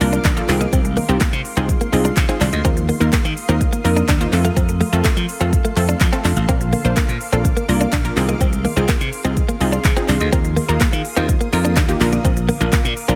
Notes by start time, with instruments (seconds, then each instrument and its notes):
Already playing: ambient pad A#4 F5 D6, downlifter
0.01 slap bass C2, synth pluck A#3 D4 F4 A#4, muted clean electric guitar stroke, open hi-hat, shaker
0.13 synth arpeggio sound A#3, clean electric guitar D4, closed hi-hat, shaker
0.24 slap bass A#1, synth arpeggio sound D3, clean electric guitar D4, kick, clap, closed hi-hat, shaker
0.37 synth pluck A#3 D4 F4 A4, synth arpeggio sound F4, closed hi-hat, shaker
0.48 slap bass C2, synth arpeggio sound D#3, ambient pad G#3 F5 C6, synth pluck C4 D#4 F4 G#4, muted clean electric guitar stroke, clap, open hi-hat, shaker
0.61 clean electric guitar A#3, synth arpeggio sound D#5, shaker
0.73 slap bass C2, synth arpeggio sound D#3, clean electric guitar C4, kick, closed hi-hat, shaker
0.85 synth arpeggio sound G#3, closed hi-hat, shaker
0.97 synth arpeggio sound D#3, clean electric guitar A#3, open hi-hat, shaker
1.09 slap bass C2, synth pluck C4 D#4 F4 G4, synth arpeggio sound C4, muted clean electric guitar stroke, closed hi-hat, shaker
1.21 synth arpeggio sound D#3, clean electric guitar A#3, kick, clap, closed hi-hat, shaker
1.33 slap bass C3, muted clean electric guitar stroke, closed hi-hat, shaker
1.45 open hi-hat, shaker
1.57 slap bass C2, synth pluck C4 D#4 F4 G#4, clean electric guitar C4, synth arpeggio sound D#5, closed hi-hat, shaker
1.69 synth arpeggio sound D#3, kick, closed hi-hat, shaker
1.81 clean electric guitar A#3, closed hi-hat, shaker
1.92 slap bass C2, synth pluck C4 D#4 F4 G#4, muted clean electric guitar stroke, open hi-hat, shaker
2.05 synth arpeggio sound C4, clean electric guitar D4, closed hi-hat, shaker
2.17 slap bass C3, synth arpeggio sound D#3, muted clean electric guitar stroke, kick, clap, closed hi-hat, shaker
2.29 synth pluck C4 D#4 F4 G#4, clean electric guitar C4, synth arpeggio sound F4, closed hi-hat, shaker
2.41 slap bass C2, synth arpeggio sound D#3, clean electric guitar D4, clap, open hi-hat, shaker
2.53 slap bass D2, synth arpeggio sound D#5, closed hi-hat, shaker
2.64 slap bass D#2, synth arpeggio sound D#3, synth pluck A#3 D#4 F4 A#4, clean electric guitar C4, ambient pad A#4 D#6, kick, closed hi-hat, shaker
2.77 synth arpeggio sound F3, closed hi-hat, shaker
2.89 synth arpeggio sound D#3, clean electric guitar A#3, open hi-hat, shaker
3.00 slap bass D#2, synth pluck A#3 D#4 F4 A#4, synth arpeggio sound A#3, muted clean electric guitar stroke, closed hi-hat, shaker
3.13 synth arpeggio sound D#3, clean electric guitar A#3, kick, clap, closed hi-hat, shaker
3.25 slap bass D#3, muted clean electric guitar stroke, closed hi-hat, shaker
3.37 open hi-hat, shaker
3.48 slap bass D#2, synth pluck A#3 D#4 F4 A#4, clean electric guitar C4, synth arpeggio sound D#5, closed hi-hat, shaker
3.61 synth arpeggio sound D#3, kick, closed hi-hat, shaker
3.73 clean electric guitar A#3, closed hi-hat, shaker
3.84 slap bass F2, synth pluck A#3 D#4 F4 A#4, muted clean electric guitar stroke, open hi-hat, shaker
3.97 synth arpeggio sound A#3, clean electric guitar D4, closed hi-hat, shaker
4.08 slap bass D#2, synth arpeggio sound D#3, clean electric guitar D4, kick, clap, closed hi-hat, shaker
4.20 synth pluck A#3 D#4 F4 C5, synth arpeggio sound F4, closed hi-hat, shaker
4.32 slap bass F2, synth arpeggio sound F3, synth pluck A3 C4 F4 A4, ambient pad A4 C6, muted clean electric guitar stroke, clap, open hi-hat, shaker
4.45 clean electric guitar A3, synth arpeggio sound F5, closed hi-hat, shaker
4.57 slap bass F2, synth arpeggio sound F3, clean electric guitar C4, kick, closed hi-hat, shaker
4.69 synth arpeggio sound A3, closed hi-hat, shaker
4.81 synth arpeggio sound F3, clean electric guitar A3, open hi-hat, shaker
4.92 slap bass F2, synth pluck A3 C4 F4 A4, synth arpeggio sound C4, muted clean electric guitar stroke, closed hi-hat, shaker
5.05 synth arpeggio sound F3, clean electric guitar A3, kick, clap, closed hi-hat, shaker
5.17 slap bass F3, muted clean electric guitar stroke, closed hi-hat, shaker
5.29 open hi-hat, shaker
5.40 slap bass F2, synth pluck A3 C4 F4 A4, clean electric guitar C4, synth arpeggio sound F5, closed hi-hat, shaker
5.53 synth arpeggio sound F3, kick, closed hi-hat, shaker
5.65 clean electric guitar A3, closed hi-hat, shaker
5.76 slap bass F2, synth pluck A3 C4 F4 A4, muted clean electric guitar stroke, clap, open hi-hat, shaker
5.89 synth arpeggio sound C4, clean electric guitar D4, closed hi-hat, shaker
6.00 synth arpeggio sound F3, slap bass F3, muted clean electric guitar stroke, kick, clap, closed hi-hat, shaker
6.12 synth pluck A3 C4 F4 A4, clean electric guitar C4, synth arpeggio sound A4, closed hi-hat, shaker
6.24 slap bass F2, synth arpeggio sound F3, clean electric guitar D4, clap, open hi-hat, shaker
6.36 slap bass A1, synth arpeggio sound F5, shaker
6.48 synth arpeggio sound D3, synth pluck A#3 D4 F4 A#4, clean electric guitar C4, ambient pad A#4 D6, kick, closed hi-hat, shaker
6.61 synth arpeggio sound F3, closed hi-hat, shaker
6.73 synth arpeggio sound D3, clean electric guitar A#3, open hi-hat, shaker
6.85 slap bass A#1, synth pluck A#3 D4 F4 C5, synth arpeggio sound A#3, muted clean electric guitar stroke, closed hi-hat, shaker
6.97 synth arpeggio sound D3, clean electric guitar A#3, kick, clap, closed hi-hat, shaker
7.09 slap bass A#2, muted clean electric guitar stroke, closed hi-hat, shaker
7.21 open hi-hat, shaker
7.32 slap bass A#1, synth pluck A#3 D4 F4 A4, clean electric guitar C4, synth arpeggio sound D5, closed hi-hat, shaker
7.45 synth arpeggio sound D3, kick, closed hi-hat, shaker
7.57 clean electric guitar A#3, closed hi-hat, shaker
7.68 slap bass C2, synth pluck A#3 D4 F4 A#4, muted clean electric guitar stroke, open hi-hat, shaker
7.81 synth arpeggio sound A#3, clean electric guitar D4, closed hi-hat, shaker
7.92 slap bass A#1, synth arpeggio sound D3, clean electric guitar D4, kick, clap, closed hi-hat, shaker
8.04 synth pluck A#3 D4 F4 A#4, synth arpeggio sound F4, closed hi-hat, shaker
8.16 slap bass C2, synth arpeggio sound D#3, synth pluck C4 D#4 F4 G#4, ambient pad G#4 C6, muted clean electric guitar stroke, clap, open hi-hat, shaker
8.29 clean electric guitar A#3, synth arpeggio sound D#5, closed hi-hat, shaker
8.41 slap bass C2, synth arpeggio sound D#3, clean electric guitar C4, kick, closed hi-hat, shaker
8.53 synth arpeggio sound G#3, closed hi-hat, shaker
8.65 synth arpeggio sound D#3, clean electric guitar A#3, open hi-hat, shaker
8.76 slap bass C2, synth pluck C4 D#4 F4 G#4, synth arpeggio sound C4, muted clean electric guitar stroke, closed hi-hat, shaker
8.88 synth arpeggio sound D#3, clean electric guitar A#3, kick, clap, closed hi-hat, shaker
9.01 slap bass C3, muted clean electric guitar stroke, closed hi-hat, shaker
9.13 open hi-hat, shaker
9.25 slap bass C2, synth pluck C4 D#4 F4 G#4, clean electric guitar C4, synth arpeggio sound D#5, closed hi-hat, shaker
9.37 synth arpeggio sound D#3, kick, closed hi-hat, shaker
9.49 clean electric guitar A#3, closed hi-hat, shaker
9.60 slap bass C2, synth pluck C4 D#4 F4 G#4, muted clean electric guitar stroke, open hi-hat, shaker
9.72 synth arpeggio sound C4, clean electric guitar D4, closed hi-hat, shaker
9.84 slap bass C3, synth arpeggio sound D#3, muted clean electric guitar stroke, kick, clap, closed hi-hat, shaker
9.97 synth pluck C4 D#4 F4 G#4, clean electric guitar C4, synth arpeggio sound F4, closed hi-hat, shaker
10.08 slap bass C2, synth arpeggio sound D#3, clean electric guitar D4, clap, open hi-hat, shaker
10.20 slap bass D2, synth arpeggio sound D#5, closed hi-hat, shaker
10.33 slap bass D#2, synth arpeggio sound D#3, synth pluck A#3 D#4 F4 A#4, clean electric guitar C4, ambient pad A#4 D#6, kick, closed hi-hat, shaker
10.45 synth arpeggio sound F3, closed hi-hat, shaker
10.56 synth arpeggio sound D#3, clean electric guitar A#3, open hi-hat, shaker
10.69 slap bass D#2, synth arpeggio sound A#3, synth pluck A#3 D#4 F4 A#4, muted clean electric guitar stroke, closed hi-hat, shaker
10.80 synth arpeggio sound D#3, clean electric guitar A#3, kick, clap, closed hi-hat, shaker
10.93 slap bass D#3, muted clean electric guitar stroke, closed hi-hat, shaker
11.05 open hi-hat, shaker
11.17 slap bass D#2, synth pluck A#3 D#4 F4 C5, clean electric guitar C4, synth arpeggio sound D#5, shaker
11.29 synth arpeggio sound D#3, kick, closed hi-hat, shaker
11.41 clean electric guitar A#3, closed hi-hat, shaker
11.52 slap bass F2, synth pluck A#3 D#4 F4 A#4, muted clean electric guitar stroke, open hi-hat, shaker
11.65 synth arpeggio sound A#3, clean electric guitar D4, closed hi-hat, shaker
11.76 slap bass D#2, synth arpeggio sound D#3, clean electric guitar D4, kick, clap, closed hi-hat, shaker
11.88 synth pluck A#3 D#4 F4 G4, synth arpeggio sound F4, closed hi-hat, shaker
12.00 slap bass A#1, synth arpeggio sound D3, synth pluck A#3 D4 F4 A#4, ambient pad F5 D6, muted clean electric guitar stroke, clap, open hi-hat, shaker
12.13 clean electric guitar A#3, synth arpeggio sound D5, closed hi-hat, shaker
12.25 slap bass A#1, synth arpeggio sound D3, clean electric guitar C4, kick, closed hi-hat, shaker
12.37 synth arpeggio sound F3, closed hi-hat, shaker
12.49 synth arpeggio sound D3, clean electric guitar A#3, open hi-hat, shaker
12.60 slap bass A#1, synth pluck A#3 D4 F4 A#4, synth arpeggio sound A#3, muted clean electric guitar stroke, closed hi-hat, shaker
12.73 synth arpeggio sound D3, clean electric guitar A#3, kick, clap, closed hi-hat, shaker
12.85 slap bass A#2, muted clean electric guitar stroke, closed hi-hat, shaker
12.97 open hi-hat, shaker
13.08 slap bass A#1, synth pluck A#3 D4 F4 A#4, clean electric guitar C4, synth arpeggio sound D5, closed hi-hat, shaker